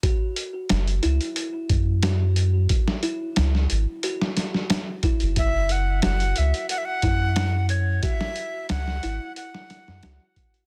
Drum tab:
HH |x-x-xxxxx-x-x-x-|x-x-x-x-x-x-x-xx|x-x-xxxxx-x-x-x-|x-x-x-x-x-x-x-xx|
SD |----o-------o---|-o--oo---oooo---|----o-------o---|-o--oo---oooo---|
BD |o---------o-----|o-------------o-|o---------o-----|o-------------o-|